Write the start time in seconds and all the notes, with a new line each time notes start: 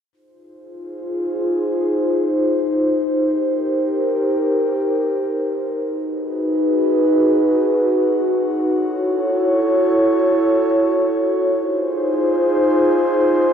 0.12 D#4 F4 G#4 C5
2.98 G4 A#4
5.84 D#4 F#4 G#4 B4
8.69 E4 A4 C#5
11.55 D#4 F4 G#4 C5